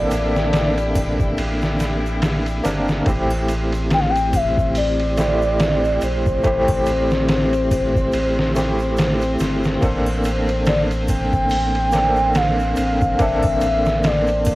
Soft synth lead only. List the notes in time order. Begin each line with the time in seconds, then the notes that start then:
Already playing: D5
3.93 G5
4.00 F5
4.10 G5
4.36 E5
4.78 D5
6.04 C5
10.68 D5
11.09 G5
12.37 F5
13.21 E5
14.07 D5